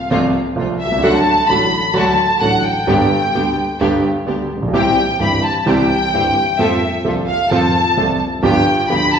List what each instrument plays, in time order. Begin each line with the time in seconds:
Already playing: violin section F5
0.11 grand piano C2 C3 F3 A3 F4, string section C3 A3 C4 F4
0.56 grand piano C2 C3 F3 A3 F4, string section C3 A3 C4 F4
0.80 violin section E5
0.85 grand piano B1
0.92 grand piano C2
0.98 grand piano C#2
1.03 grand piano D2 D3 F#3 A3 F#4, string section A3 D4 F#4, violin section F#5
1.16 violin section A5
1.48 grand piano A1 A2 D3 F#3 A3 F#4, string section A3 D4 F#4, violin section B5
1.93 grand piano D2 D3 F#3 A3 F#4, string section A3 D4 F#4, violin section A5
2.40 grand piano A1 A2 D3 F#3 A3 F#4, string section A3 D4 F#4, violin section F#5
2.63 violin section G5
2.87 grand piano G1 G2 D3 G3 B3 G4, string section B3 D4 G4
3.34 grand piano D2 D3 G3 B3 G4, string section B3 D4 G4
3.80 grand piano G1 G2 D3 G3 B3 G4, string section B3 D4 G4
4.26 grand piano D2 D3 G3 B3 G4, string section B3 D4 G4
4.57 grand piano A1
4.62 grand piano A#1
4.68 grand piano B1
4.73 grand piano C2 C3 E3 G3 C4 G4, string section C4 E4 G4, violin section G5
5.20 grand piano G1 G2 E3 G3 C4 G4, string section C4 E4 G4, violin section B5
5.45 violin section A5
5.61 violin section A5
5.66 grand piano C2 C3 E3 G3 C4 G4, string section C4 E4 G4, violin section G5
6.13 grand piano G1 G2 E3 G3 C4 G4, string section C4 E4 G4
6.59 grand piano F2 F3 A3 C4 A4, string section C4 F4 A4, violin section E5
7.05 grand piano C2 C3 F3 A3 C4 A4, string section C4 F4 A4
7.28 violin section F5
7.51 grand piano F2 F3 A3 C4 A4, string section C4 F4 A4, violin section A5
7.97 grand piano C2 C3 F3 A3 C4 A4, string section C4 F4 A4
8.43 grand piano G1 G2 F3 B3 D4 G4, string section B3 F4 G4, violin section G5
8.90 grand piano D2 D3 F3 B3 D4 G4, string section B3 F4 G4, violin section B5
9.14 violin section A5